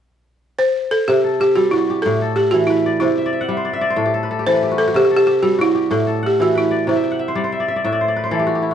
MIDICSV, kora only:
0, 0, Header, 1, 2, 480
1, 0, Start_track
1, 0, Tempo, 322061
1, 1595, Time_signature, 12, 3, 24, 8
1, 13028, End_track
2, 0, Start_track
2, 0, Title_t, "Kora"
2, 0, Program_c, 0, 46
2, 1611, Note_on_c, 0, 48, 73
2, 1849, Note_on_c, 0, 69, 50
2, 2088, Note_on_c, 0, 67, 55
2, 2334, Note_on_c, 0, 55, 64
2, 2583, Note_on_c, 0, 66, 57
2, 2824, Note_off_c, 0, 67, 0
2, 2830, Note_on_c, 0, 67, 58
2, 3065, Note_on_c, 0, 45, 75
2, 3112, Note_off_c, 0, 48, 0
2, 3112, Note_off_c, 0, 55, 0
2, 3297, Note_off_c, 0, 69, 0
2, 3303, Note_on_c, 0, 69, 53
2, 3528, Note_on_c, 0, 78, 57
2, 3618, Note_off_c, 0, 67, 0
2, 3780, Note_on_c, 0, 52, 64
2, 4023, Note_on_c, 0, 71, 62
2, 4260, Note_on_c, 0, 74, 54
2, 4484, Note_on_c, 0, 48, 75
2, 4553, Note_off_c, 0, 45, 0
2, 4553, Note_off_c, 0, 52, 0
2, 4735, Note_on_c, 0, 76, 57
2, 4762, Note_off_c, 0, 66, 0
2, 4849, Note_off_c, 0, 74, 0
2, 4855, Note_on_c, 0, 74, 62
2, 4952, Note_off_c, 0, 76, 0
2, 4958, Note_on_c, 0, 76, 54
2, 4966, Note_off_c, 0, 78, 0
2, 5080, Note_on_c, 0, 78, 63
2, 5189, Note_off_c, 0, 76, 0
2, 5194, Note_on_c, 0, 55, 63
2, 5194, Note_on_c, 0, 76, 55
2, 5267, Note_off_c, 0, 69, 0
2, 5321, Note_on_c, 0, 72, 58
2, 5410, Note_off_c, 0, 71, 0
2, 5432, Note_off_c, 0, 74, 0
2, 5438, Note_on_c, 0, 74, 61
2, 5559, Note_off_c, 0, 76, 0
2, 5565, Note_on_c, 0, 76, 66
2, 5677, Note_off_c, 0, 74, 0
2, 5683, Note_on_c, 0, 74, 69
2, 5812, Note_off_c, 0, 72, 0
2, 5818, Note_on_c, 0, 72, 61
2, 5906, Note_on_c, 0, 45, 69
2, 5913, Note_on_c, 0, 69, 61
2, 5993, Note_off_c, 0, 48, 0
2, 5993, Note_off_c, 0, 55, 0
2, 6044, Note_on_c, 0, 67, 62
2, 6134, Note_off_c, 0, 78, 0
2, 6162, Note_off_c, 0, 69, 0
2, 6168, Note_on_c, 0, 69, 59
2, 6304, Note_on_c, 0, 71, 57
2, 6394, Note_off_c, 0, 72, 0
2, 6413, Note_off_c, 0, 69, 0
2, 6419, Note_on_c, 0, 69, 62
2, 6538, Note_off_c, 0, 67, 0
2, 6544, Note_on_c, 0, 67, 58
2, 6658, Note_off_c, 0, 69, 0
2, 6659, Note_on_c, 0, 52, 67
2, 6663, Note_on_c, 0, 69, 55
2, 6764, Note_off_c, 0, 71, 0
2, 6770, Note_on_c, 0, 71, 67
2, 6895, Note_off_c, 0, 67, 0
2, 6901, Note_on_c, 0, 67, 62
2, 7024, Note_on_c, 0, 66, 67
2, 7106, Note_off_c, 0, 76, 0
2, 7126, Note_off_c, 0, 67, 0
2, 7132, Note_on_c, 0, 67, 62
2, 7258, Note_off_c, 0, 66, 0
2, 7264, Note_on_c, 0, 66, 67
2, 7334, Note_off_c, 0, 74, 0
2, 7367, Note_on_c, 0, 48, 72
2, 7433, Note_off_c, 0, 45, 0
2, 7433, Note_off_c, 0, 52, 0
2, 7456, Note_off_c, 0, 71, 0
2, 7608, Note_off_c, 0, 69, 0
2, 7614, Note_on_c, 0, 69, 52
2, 7850, Note_off_c, 0, 67, 0
2, 7856, Note_on_c, 0, 67, 56
2, 7946, Note_off_c, 0, 66, 0
2, 8086, Note_on_c, 0, 55, 64
2, 8325, Note_on_c, 0, 66, 59
2, 8561, Note_off_c, 0, 67, 0
2, 8567, Note_on_c, 0, 67, 59
2, 8802, Note_on_c, 0, 45, 77
2, 8871, Note_off_c, 0, 48, 0
2, 8871, Note_off_c, 0, 55, 0
2, 9039, Note_off_c, 0, 69, 0
2, 9045, Note_on_c, 0, 69, 54
2, 9281, Note_on_c, 0, 78, 58
2, 9370, Note_off_c, 0, 67, 0
2, 9535, Note_on_c, 0, 52, 69
2, 9766, Note_on_c, 0, 71, 59
2, 10000, Note_on_c, 0, 74, 59
2, 10239, Note_on_c, 0, 48, 70
2, 10309, Note_off_c, 0, 45, 0
2, 10309, Note_off_c, 0, 52, 0
2, 10362, Note_on_c, 0, 76, 61
2, 10488, Note_on_c, 0, 79, 58
2, 10577, Note_off_c, 0, 66, 0
2, 10577, Note_off_c, 0, 78, 0
2, 10605, Note_on_c, 0, 78, 58
2, 10714, Note_off_c, 0, 76, 0
2, 10720, Note_on_c, 0, 76, 63
2, 10852, Note_on_c, 0, 72, 65
2, 10941, Note_off_c, 0, 71, 0
2, 10955, Note_off_c, 0, 74, 0
2, 10959, Note_on_c, 0, 55, 62
2, 10961, Note_on_c, 0, 74, 60
2, 11009, Note_off_c, 0, 69, 0
2, 11049, Note_off_c, 0, 78, 0
2, 11083, Note_off_c, 0, 72, 0
2, 11089, Note_on_c, 0, 72, 62
2, 11206, Note_off_c, 0, 76, 0
2, 11212, Note_on_c, 0, 76, 59
2, 11320, Note_off_c, 0, 74, 0
2, 11326, Note_on_c, 0, 74, 60
2, 11445, Note_off_c, 0, 76, 0
2, 11451, Note_on_c, 0, 76, 64
2, 11562, Note_off_c, 0, 74, 0
2, 11568, Note_on_c, 0, 74, 58
2, 11691, Note_off_c, 0, 76, 0
2, 11691, Note_on_c, 0, 45, 70
2, 11697, Note_on_c, 0, 76, 64
2, 11746, Note_off_c, 0, 48, 0
2, 11746, Note_off_c, 0, 55, 0
2, 11804, Note_off_c, 0, 74, 0
2, 11810, Note_on_c, 0, 74, 61
2, 11876, Note_off_c, 0, 79, 0
2, 11932, Note_off_c, 0, 72, 0
2, 11938, Note_on_c, 0, 72, 55
2, 12039, Note_off_c, 0, 74, 0
2, 12045, Note_on_c, 0, 74, 57
2, 12167, Note_on_c, 0, 71, 57
2, 12257, Note_off_c, 0, 72, 0
2, 12276, Note_on_c, 0, 72, 61
2, 12388, Note_on_c, 0, 52, 72
2, 12393, Note_on_c, 0, 69, 59
2, 12509, Note_on_c, 0, 67, 63
2, 12618, Note_on_c, 0, 66, 61
2, 12739, Note_off_c, 0, 67, 0
2, 12745, Note_on_c, 0, 67, 61
2, 12851, Note_on_c, 0, 64, 53
2, 12975, Note_off_c, 0, 66, 0
2, 12981, Note_on_c, 0, 66, 60
2, 13028, Note_off_c, 0, 45, 0
2, 13028, Note_off_c, 0, 52, 0
2, 13028, Note_off_c, 0, 64, 0
2, 13028, Note_off_c, 0, 66, 0
2, 13028, Note_off_c, 0, 67, 0
2, 13028, Note_off_c, 0, 69, 0
2, 13028, Note_off_c, 0, 71, 0
2, 13028, Note_off_c, 0, 72, 0
2, 13028, Note_off_c, 0, 74, 0
2, 13028, Note_off_c, 0, 76, 0
2, 13028, End_track
0, 0, End_of_file